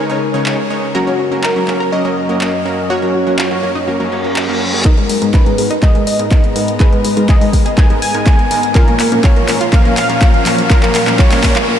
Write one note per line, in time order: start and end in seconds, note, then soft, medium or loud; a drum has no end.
0.00 0.91 C#3 medium
0.00 0.91 G#3 medium
0.00 0.91 D#4 medium
0.00 0.67 A#4 medium
0.00 0.91 C#5 medium
0.10 0.19 C#3 medium
0.10 0.19 G#3 medium
0.10 0.19 C#4 medium
0.10 0.19 D#4 medium
0.10 0.19 C#5 loud
0.34 0.44 C#3 medium
0.34 0.44 G#3 medium
0.34 0.44 C#4 medium
0.34 0.44 D#4 medium
0.34 0.44 C#5 loud
0.46 0.56 C#3 medium
0.46 0.56 G#3 medium
0.46 0.56 C#4 medium
0.46 0.56 D#4 medium
0.46 0.56 C#5 loud
0.46 clap loud
0.70 0.86 G#3 medium
0.70 0.86 C#4 medium
0.70 0.86 D#4 medium
0.70 0.86 C#5 medium
0.95 4.81 F#2 medium
0.95 1.05 F#3 medium
0.95 4.81 F#3 medium
0.95 1.05 A#3 medium
0.95 1.05 C#4 medium
0.95 4.81 C#4 medium
0.95 1.40 F#4 loud
0.95 1.05 A#4 loud
0.95 4.81 A#4 medium
1.07 1.17 F#3 medium
1.07 1.17 A#3 medium
1.07 1.17 C#4 medium
1.07 1.17 A#4 medium
1.19 1.29 C#4 medium
1.31 1.41 F#3 medium
1.31 1.41 A#3 medium
1.31 1.41 C#4 medium
1.31 1.41 A#4 medium
1.43 1.53 A#4 medium
1.43 1.94 A#4 loud
1.43 clap loud
1.56 1.66 F#3 medium
1.56 1.66 A#3 medium
1.56 1.66 C#4 medium
1.56 1.66 A#4 medium
1.68 1.78 F#3 medium
1.68 1.78 A#3 medium
1.68 1.78 C#4 medium
1.68 1.78 A#4 medium
1.68 clap medium
1.80 1.90 A#4 medium
1.92 2.02 F#3 medium
1.92 2.02 A#3 medium
1.92 2.02 C#4 medium
1.92 2.02 A#4 medium
1.92 2.91 D#5 loud
2.05 2.14 F#3 medium
2.05 2.14 A#3 medium
2.05 2.14 C#4 medium
2.05 2.14 A#4 loud
2.29 2.39 F#3 medium
2.29 2.39 A#3 medium
2.29 2.39 C#4 medium
2.29 2.39 A#4 loud
2.41 2.51 F#3 medium
2.41 2.51 A#3 medium
2.41 2.51 C#4 medium
2.41 2.51 A#4 loud
2.41 clap loud
2.65 2.81 F#3 medium
2.65 2.81 A#3 medium
2.65 2.81 C#4 medium
2.65 2.81 A#4 medium
2.90 3.00 F#3 medium
2.90 3.00 A#3 medium
2.90 3.00 C#4 medium
2.90 3.00 F#4 loud
2.90 3.00 A#4 loud
2.90 4.61 C#5 loud
3.02 3.12 F#3 medium
3.02 3.12 A#3 medium
3.02 3.12 C#4 medium
3.02 3.12 A#4 medium
3.14 3.24 F#3 medium
3.27 3.36 F#3 medium
3.27 3.36 A#3 medium
3.27 3.36 C#4 medium
3.27 3.36 A#4 medium
3.39 3.49 F4 medium
3.39 clap loud
3.51 3.61 F#3 medium
3.51 3.61 A#3 medium
3.51 3.61 C#4 medium
3.51 3.61 A#4 medium
3.63 3.73 F#3 medium
3.63 3.73 A#3 medium
3.63 3.73 C#4 medium
3.63 3.73 A#4 medium
3.75 3.85 D#4 medium
3.87 3.97 F#3 medium
3.87 3.97 A#3 medium
3.87 3.97 C#4 medium
3.87 3.97 A#4 medium
3.87 reverse cymbal medium
4.00 4.09 F#3 medium
4.00 4.10 F#3 medium
4.00 4.10 A#3 medium
4.00 4.10 C#4 medium
4.00 4.10 A#4 loud
4.12 4.22 F#3 medium
4.12 4.22 A#3 medium
4.12 4.22 C#4 medium
4.12 4.22 C#5 medium
4.24 4.40 F#3 medium
4.24 4.40 A#3 medium
4.24 4.40 C#4 medium
4.24 4.40 A#4 medium
4.36 clap loud
4.49 4.64 F#3 medium
4.49 4.64 A#3 medium
4.49 4.64 C#4 medium
4.49 4.64 A#4 loud
4.73 4.83 F#3 medium
4.73 4.83 A#3 medium
4.73 4.83 C#4 medium
4.73 4.83 G#4 medium
4.85 4.95 G#2 medium
4.85 8.71 G#2 medium
4.85 4.95 G#3 medium
4.85 8.71 G#3 medium
4.85 8.71 B3 medium
4.85 4.95 D#4 loud
4.85 4.95 D#4 medium
4.85 4.95 A#4 loud
4.85 5.35 A#4 loud
4.85 11.64 A#5 medium
4.85 kick loud
4.85 clap soft
4.85 closed hi-hat soft
4.85 riser medium
4.97 5.07 G#2 medium
4.97 5.07 G#3 medium
4.97 5.07 B3 medium
4.97 5.07 D#4 medium
4.97 5.07 A#4 medium
4.97 closed hi-hat soft
5.09 5.19 G#3 medium
5.09 open hi-hat loud
5.22 5.31 G#2 medium
5.22 5.31 G#3 medium
5.22 5.31 B3 medium
5.22 5.31 D#4 medium
5.22 5.31 A#4 medium
5.22 closed hi-hat soft
5.34 5.44 D#4 medium
5.34 5.82 B4 medium
5.34 kick loud
5.34 clap soft
5.34 closed hi-hat medium
5.46 5.56 G#2 medium
5.46 5.56 G#3 medium
5.46 5.56 B3 medium
5.46 5.56 D#4 medium
5.46 5.56 A#4 medium
5.46 closed hi-hat soft
5.58 5.68 G#2 medium
5.58 5.68 G#3 medium
5.58 5.68 B3 medium
5.58 5.68 D#4 medium
5.58 5.68 A#4 medium
5.58 open hi-hat loud
5.71 5.80 D#4 medium
5.71 closed hi-hat medium
5.83 5.93 G#2 medium
5.83 5.92 G#3 medium
5.83 5.93 G#3 medium
5.83 5.93 B3 medium
5.83 5.93 D#4 medium
5.83 5.93 A#4 medium
5.83 6.05 D#5 loud
5.83 kick loud
5.83 clap soft
5.83 closed hi-hat medium
5.95 6.05 G#2 medium
5.95 6.05 G#3 medium
5.95 6.05 B3 medium
5.95 6.05 D#4 medium
5.95 6.05 A#4 loud
5.95 closed hi-hat soft
6.07 6.82 D#5 loud
6.07 open hi-hat loud
6.19 6.30 G#2 medium
6.19 6.30 G#3 medium
6.19 6.30 B3 medium
6.19 6.30 D#4 medium
6.19 6.30 A#4 medium
6.19 closed hi-hat medium
6.31 6.41 G#2 medium
6.31 6.41 G#3 medium
6.31 6.41 B3 medium
6.31 6.41 D#4 medium
6.31 6.41 A#4 loud
6.31 kick loud
6.31 clap medium
6.31 closed hi-hat medium
6.44 closed hi-hat soft
6.56 6.72 G#2 medium
6.56 6.72 G#3 medium
6.56 6.72 B3 medium
6.56 6.72 D#4 medium
6.56 6.72 A#4 medium
6.56 open hi-hat loud
6.68 closed hi-hat medium
6.80 6.90 G#2 medium
6.80 6.90 G#3 medium
6.80 6.90 B3 medium
6.80 6.90 D#4 medium
6.80 6.90 G#4 loud
6.80 6.90 A#4 loud
6.80 7.31 B4 loud
6.80 kick loud
6.80 clap medium
6.80 closed hi-hat medium
6.92 7.02 G#2 medium
6.92 7.02 G#3 medium
6.92 7.02 B3 medium
6.92 7.02 D#4 medium
6.92 7.02 A#4 medium
6.92 closed hi-hat soft
7.05 7.14 G#3 medium
7.05 open hi-hat loud
7.17 7.27 G#2 medium
7.17 7.27 G#3 medium
7.17 7.27 B3 medium
7.17 7.27 D#4 medium
7.17 7.27 A#4 medium
7.17 closed hi-hat medium
7.29 7.39 G#4 loud
7.29 7.79 D#5 loud
7.29 kick loud
7.29 clap medium
7.29 closed hi-hat medium
7.41 7.51 G#2 medium
7.41 7.51 G#3 medium
7.41 7.51 B3 medium
7.41 7.51 D#4 medium
7.41 7.51 A#4 medium
7.41 open hi-hat medium
7.53 7.63 G#2 medium
7.53 7.63 G#3 medium
7.53 7.63 B3 medium
7.53 7.63 D#4 medium
7.53 7.63 A#4 medium
7.53 kick medium
7.53 open hi-hat loud
7.66 7.75 G#4 medium
7.66 closed hi-hat medium
7.78 7.88 G#2 medium
7.78 7.88 G#3 medium
7.78 7.88 B3 medium
7.78 7.88 D#4 medium
7.78 7.88 A#4 medium
7.78 8.02 G#5 loud
7.78 kick loud
7.78 clap medium
7.78 closed hi-hat soft
7.90 8.00 G#2 medium
7.90 8.00 G#3 medium
7.90 8.00 B3 medium
7.90 8.00 D#4 medium
7.90 8.00 A#4 loud
7.90 closed hi-hat soft
8.02 8.77 G#5 loud
8.02 open hi-hat loud
8.14 8.25 G#2 medium
8.14 8.25 G#3 medium
8.14 8.25 B3 medium
8.14 8.25 D#4 medium
8.14 8.25 A#4 loud
8.14 closed hi-hat medium
8.26 8.36 G#2 medium
8.26 8.36 G#3 medium
8.26 8.36 B3 medium
8.26 8.36 D#4 medium
8.26 8.36 A#4 loud
8.26 kick loud
8.26 clap medium
8.26 closed hi-hat medium
8.39 closed hi-hat soft
8.51 8.67 G#3 medium
8.51 8.67 B3 medium
8.51 8.67 D#4 medium
8.51 8.67 A#4 loud
8.51 open hi-hat loud
8.63 closed hi-hat medium
8.75 11.65 A#2 medium
8.75 8.85 A#2 loud
8.75 11.65 F3 medium
8.75 8.85 F3 medium
8.75 8.85 A#3 medium
8.75 11.65 C#4 medium
8.75 8.85 C#4 medium
8.75 8.85 F4 loud
8.75 8.85 A#4 loud
8.75 9.26 A#4 loud
8.75 kick loud
8.75 clap medium
8.75 closed hi-hat soft
8.88 8.97 A#2 medium
8.88 8.97 F3 medium
8.88 8.97 A#3 medium
8.88 8.97 C#4 medium
8.88 8.97 A#4 medium
8.88 closed hi-hat soft
9.00 9.10 A#3 medium
9.00 clap medium
9.00 open hi-hat loud
9.12 9.22 A#2 medium
9.12 9.22 F3 medium
9.12 9.22 A#3 medium
9.12 9.22 C#4 medium
9.12 9.22 A#4 medium
9.12 closed hi-hat soft
9.24 9.34 F4 medium
9.24 9.74 C#5 loud
9.24 kick loud
9.24 clap medium
9.24 closed hi-hat medium
9.36 9.46 A#2 medium
9.36 9.46 F3 medium
9.36 9.46 A#3 medium
9.36 9.46 C#4 medium
9.36 9.46 A#4 medium
9.36 closed hi-hat soft
9.48 9.58 A#2 medium
9.48 9.58 F3 medium
9.48 9.58 A#3 medium
9.48 9.58 C#4 medium
9.48 9.58 A#4 medium
9.48 clap medium
9.48 open hi-hat loud
9.61 9.70 F4 medium
9.61 closed hi-hat soft
9.73 9.83 A#2 medium
9.73 9.83 F3 medium
9.73 9.83 A#3 medium
9.73 9.83 C#4 medium
9.73 9.83 A#4 medium
9.73 9.97 F5 loud
9.73 kick loud
9.73 clap medium
9.73 closed hi-hat soft
9.85 9.95 A#2 medium
9.85 9.95 F3 medium
9.85 9.95 A#3 medium
9.85 9.95 C#4 medium
9.85 9.95 A#4 loud
9.85 closed hi-hat soft
9.97 10.72 F5 loud
9.97 clap medium
9.97 open hi-hat loud
10.10 10.20 A#2 medium
10.10 10.20 F3 medium
10.10 10.20 A#3 medium
10.10 10.20 C#4 medium
10.10 10.20 A#4 loud
10.10 closed hi-hat medium
10.22 10.32 A#2 medium
10.22 10.32 F3 medium
10.22 10.32 A#3 medium
10.22 10.32 C#4 medium
10.22 10.32 A#4 loud
10.22 kick loud
10.22 clap medium
10.22 closed hi-hat soft
10.34 closed hi-hat soft
10.46 10.62 A#2 medium
10.46 10.62 F3 medium
10.46 10.62 A#3 medium
10.46 10.62 C#4 medium
10.46 10.62 A#4 medium
10.46 clap medium
10.46 open hi-hat loud
10.58 closed hi-hat medium
10.70 10.80 A#2 loud
10.70 10.80 F3 medium
10.70 10.80 A#3 medium
10.70 10.80 C#4 medium
10.70 10.80 F4 loud
10.70 10.80 A#4 loud
10.70 11.19 A#4 loud
10.70 kick loud
10.70 clap medium
10.70 closed hi-hat soft
10.83 10.92 A#2 medium
10.83 10.92 F3 medium
10.83 10.92 A#3 medium
10.83 10.92 C#4 medium
10.83 10.92 A#4 medium
10.83 clap medium
10.83 closed hi-hat soft
10.95 11.05 A#3 medium
10.95 clap medium
10.95 open hi-hat loud
11.07 11.17 A#2 medium
11.07 11.17 F3 medium
11.07 11.17 A#3 medium
11.07 11.17 C#4 medium
11.07 11.17 A#4 medium
11.07 clap medium
11.07 closed hi-hat soft
11.19 11.29 F4 medium
11.19 11.65 C#5 loud
11.19 kick loud
11.19 clap medium
11.19 closed hi-hat soft
11.31 11.41 A#2 medium
11.31 11.41 F3 medium
11.31 11.41 A#3 medium
11.31 11.41 C#4 medium
11.31 11.41 A#4 medium
11.31 clap medium
11.31 open hi-hat medium
11.43 11.53 A#2 medium
11.43 11.53 F3 medium
11.43 11.53 A#3 medium
11.43 11.53 C#4 medium
11.43 11.53 A#4 medium
11.43 kick medium
11.43 clap loud
11.43 open hi-hat loud
11.56 11.65 F4 medium
11.56 clap medium
11.56 closed hi-hat medium
11.68 11.78 A#3 medium